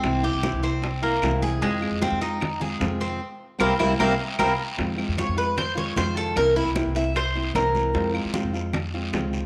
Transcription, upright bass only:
\new Staff \with { instrumentName = "Upright bass" } { \clef bass \time 4/4 \key f \minor \tempo 4 = 152 c,8. c,8 c,4.~ c,16 c,4 | f,8. f,8 f,4.~ f,16 f,4 | r4 c,8 c,8 c,8 r8 c,8 r8 | f,8. f,8 f,4.~ f,16 f,4 |
c,8. c,8 c,4.~ c,16 c,4 | f,8. f,8 f,4.~ f,16 des,4 | }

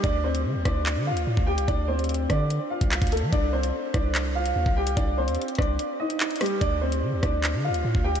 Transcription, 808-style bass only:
\new Staff \with { instrumentName = "808-style bass" } { \clef bass \time 4/4 \key d \phrygian \tempo 4 = 146 d,4 d16 d,16 d,8. d16. d,16. a,16 d,8 c,16 | d,4. d8. r8 c,8 d,8 f16 | c,4 r8 c,4. ees,16 c,8. | c,8. ees,16 r8 c,8 r2 |
d,4 d16 d,16 d,8. d16. d,16. a,16 d,8 c,16 | }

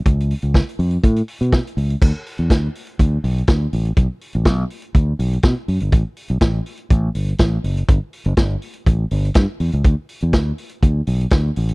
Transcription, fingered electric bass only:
\new Staff \with { instrumentName = "Fingered electric bass" } { \clef bass \time 4/4 \key a \mixolydian \tempo 4 = 122 cis,8. cis,8 r16 eis,8 a,8 r16 b,8 r16 cis,8 | \key g \lydian d,16 r8 e,16 d,8 r8 d,8 b,,8 d,8 a,,8 | b,,16 r8 a,,16 b,,8 r8 d,8 b,,8 b,16 r16 fis,16 g,,16 | a,,16 r8 b,,16 a,,8 r8 a,,8 g,,8 a,,8 fis,,8 |
g,,16 r8 fis,,16 g,,8 r8 a,,8 g,,8 g,16 r16 e,16 cis,16 | d,16 r8 e,16 d,8 r8 d,8 b,,8 d,8 a,,8 | }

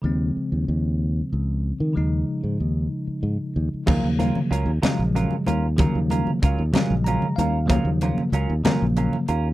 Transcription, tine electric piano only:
<<
  \new Staff \with { instrumentName = "Tine electric piano" } { \time 6/8 \key ees \dorian \tempo 4. = 63 r2. | r2. | r2. | r2 bes''8 f''8 |
r2. | }
  \new Staff \with { instrumentName = "Tine electric piano" } { \clef bass \time 6/8 \key ees \dorian <des f aes c'>2. | <des f aes ees'>2. | <des f ges bes>4 r8 <des f ges aes>4 r8 | <des f ges bes>4 r8 <des f ges aes>4 r8 |
<des f ges bes>4 r8 <des f ges bes>4 r8 | }
>>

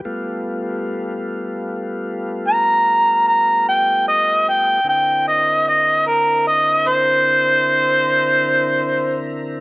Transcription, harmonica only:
\new Staff \with { instrumentName = "Harmonica" } { \time 12/8 \key c \mixolydian \tempo 4. = 50 r2. bes''4 bes''8 g''8 ees''8 g''8 | g''8 ees''8 ees''8 bes'8 ees''8 c''2. r8 | }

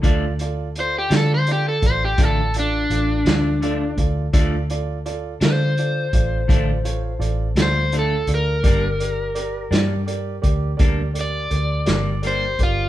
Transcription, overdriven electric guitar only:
\new Staff \with { instrumentName = "Overdriven electric guitar" } { \time 12/8 \key d \minor \tempo 4. = 56 r4 c''16 g'16 a'16 c''16 g'16 a'16 c''16 g'16 a'8 d'2 r8 | r4. c''2. c''8 a'8 bes'8~ | bes'4. r2 d''4. c''8 f'8 | }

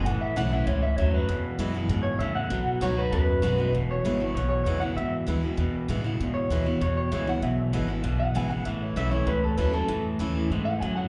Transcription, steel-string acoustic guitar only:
\new Staff \with { instrumentName = "Steel-string acoustic guitar" } { \time 4/4 \key e \major \tempo 4 = 195 << { r4 <e a cis' e'>8 <cis' e'>8 r2 | r4 <e gis b e'>8 <b e'>8 r2 | r4 <fis b dis' fis'>4 r4 <fis b dis' fis'>8 <dis' fis'>8 | r4 <e gis b e'>8 <b e'>8 r4 <e gis b e'>8 <b e'>8 |
r4 <e gis b e'>8 <b e'>8 r4 <e gis b e'>8 <b e'>8 | r4 <e gis b e'>8 <b e'>8 r4 <e gis b e'>8 <b e'>8 | r4 <e gis b e'>8 <b e'>8 r4 <e gis b e'>8 <b e'>8 | r4 <e a cis' e'>8 <cis' e'>8 r4 <e a cis' e'>8 <cis' e'>8 |
r4 <e a cis' e'>4 r2 | } \\ { a,2 gis,4 fis,4 | e,2 gis,4 a,4 | b,2 fis,2 | e,2 b,2 |
e,2 b,2 | e,2 b,2 | e,2 b,2 | a,2 e,2 |
a,2 gis,4 fis,4 | } >> }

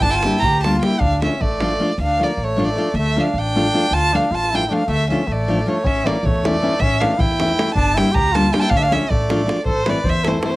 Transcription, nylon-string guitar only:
\new Staff \with { instrumentName = "Nylon-string guitar" } { \time 5/8 \key d \minor \tempo 4 = 156 r8 <g bes d' g'>8 r8 <g bes d' g'>8 <g bes d' g'>8 | r8 <f a d' f'>8 r8 <f a d' f'>8 <f a d' f'>8 | r8 <f a d' f'>8 r8 <f a d' f'>8 <f a d' f'>8 | r8 <f a d' f'>8 r8 <f a d' f'>8 <f a d' f'>8 |
r8 <f a d' f'>8 r8 <f a d' f'>8 <f a d' f'>8 | r8 <f a d' f'>8 r8 <f a d' f'>8 <f a d' f'>8 | r8 <e a cis' e'>8 r8 <e a cis' e'>8 <e a cis' e'>8 | r8 <e a cis' e'>8 r8 <e a cis' e'>8 <e a cis' e'>8 |
r8 <g bes d' g'>8 r8 <g bes d' g'>8 <g bes d' g'>8 | r8 <f a d' f'>8 r8 <f a d' f'>8 <f a d' f'>8 | \key a \minor r8 <e a c' e'>8 r8 <e a c' e'>8 <e a c' e'>8 | }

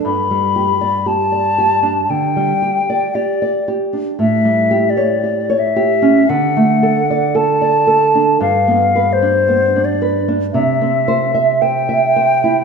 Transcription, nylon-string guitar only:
\new Staff \with { instrumentName = "Nylon-string guitar" } { \time 4/4 \key g \major \tempo 4 = 57 g,16 g16 g'16 d''16 g'16 d''16 g'16 d'16 d16 g16 g'16 d''16 g'16 d''16 g'16 d'16 | a,16 g16 g'16 cis''16 g'16 cis''16 g'16 cis'16 d16 a16 a'16 d''16 a'16 d''16 a'16 d'16 | g,16 b16 b'16 d'16 b16 d'16 b'16 d'16 c16 c'16 c''16 e''16 c''16 e''16 c''16 e'16 | }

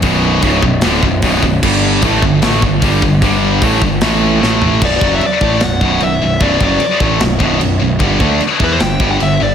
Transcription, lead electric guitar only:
\new Staff \with { instrumentName = "Lead electric guitar" } { \time 4/4 \key b \minor \tempo 4 = 151 r1 | r1 | r1 | d''8. e''16 d''4 fis''4 e''4 |
d''8 d''4 r2 r8 | r4. b'16 c''16 g''8. fis''16 e''8 d''8 | }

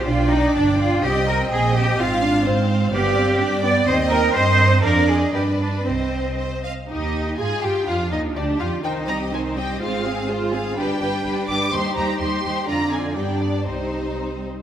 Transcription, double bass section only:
\new Staff \with { instrumentName = "Double bass section" } { \clef bass \time 2/4 \key c \minor \tempo 4 = 124 b,,4 g,,4 | c,4 bes,,4 | aes,,4 aes,4 | g,,4 g,4 |
ees,4 g,4 | f,4 g,4 | c,4. r8 | ees,4 aes,8 g,8 |
f,8 ees,8 d,8 f,8 | c,2 | aes,,2 | g,,8 g,,8 g,,8 g,,8 |
ees,8 ees,8 ees,8 ees,8 | f,4 g,4 | c,4. r8 | }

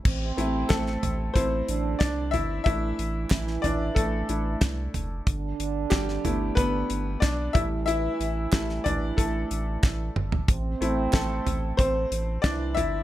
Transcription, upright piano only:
\new Staff \with { instrumentName = "Upright piano" } { \time 4/4 \key a \dorian \tempo 4 = 92 << { r4 <a a'>4 c''4 <d' d''>8 <e' e''>8 | e''4. <d' d''>8 <a a'>4. r8 | r4 <g g'>4 <b b'>4 <d' d''>8 e''8 | <e' e''>4. <d' d''>8 <a a'>4. r8 |
r4 <a a'>4 <c' c''>4 <d' d''>8 <e' e''>8 | } \\ { r8 <a c' e'>8 r4 <a c' e'>8 r4. | <a d' e'>2~ <a d' e'>8 <a d' e'>8 r4 | r4. <a b e'>4. r8 <g a e'>8~ | <g a e'>4 <g a e'>8 r2 r8 |
r8 <a c' e'>4. r2 | } >> }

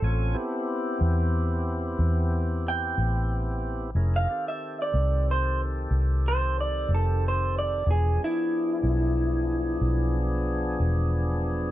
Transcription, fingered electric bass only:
\new Staff \with { instrumentName = "Fingered electric bass" } { \clef bass \time 12/8 \key a \minor \tempo 4. = 61 a,,8 r4 e,4. e,4. a,,4. | f,,8 r4 c,4. c,4. f,,4. | e,,8 r4 b,,4. b,,4. e,,4. | }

